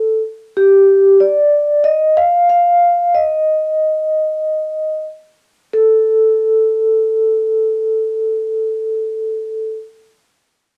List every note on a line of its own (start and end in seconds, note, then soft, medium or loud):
0.00 0.21 A4 medium
0.57 1.17 G4 medium
1.20 1.87 D5 medium
1.84 2.17 D#5 medium
2.17 2.47 F5 loud
2.50 3.16 F5 medium
3.15 5.04 D#5 medium
5.73 9.77 A4 medium